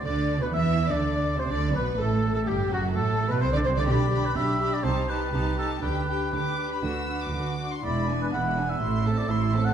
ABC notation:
X:1
M:4/4
L:1/16
Q:1/4=124
K:Bphr
V:1 name="Violin section"
d3 B e3 d4 c d2 B2 | A3 A G2 F2 A3 B c d c d | b2 b2 b2 b2 a2 a2 a2 a2 | g2 g2 d'3 b e'3 d'4 c' |
b2 ^g2 b2 g2 c'2 a2 c'2 a2 |]
V:2 name="Oboe"
d3 B e3 d4 c d2 B2 | A3 A G2 F2 A3 B c d c d | d3 B e3 d c2 B4 A2 | B12- B2 z2 |
d3 B f3 e4 d e3 f |]
V:3 name="Violin section"
d3 B e3 d4 c d2 B2 | A3 A G2 F2 A3 B c d c d | G2 G2 G2 G2 G2 G2 G2 G2 | G2 G2 G2 G2 F2 F2 F2 F2 |
E2 D2 E2 D2 E2 A2 E2 A2 |]
V:4 name="Viola section"
D3 B, E3 D4 C D2 B,2 | A,3 A, G,2 F,2 A,3 B, C D C D | D2 D2 D2 D2 _E2 E2 E2 E2 | D2 D2 D2 D2 D2 D2 D2 D2 |
^G,2 B,2 G,2 B,2 A,2 C2 A,2 C2 |]
V:5 name="Cello section" clef=bass
D,3 B,, E,3 D,4 C, D,2 B,,2 | A,,3 A,, G,,2 F,,2 A,,3 B,, C, D, C, D, | B,,4 B,,4 C,4 C,4 | D,4 D,4 D,4 D,4 |
E,,4 E,,4 A,,4 A,,4 |]
V:6 name="Double bass section" clef=bass
D,,3 z E,,3 D,,4 z D,,2 B,,,2 | A,,,3 z G,,,2 F,,,2 A,,,3 z C,, z C,, z | B,,,4 B,,,4 C,,4 C,,4 | D,,4 D,,4 D,,4 D,,4 |
E,,,4 E,,,4 A,,,4 A,,,4 |]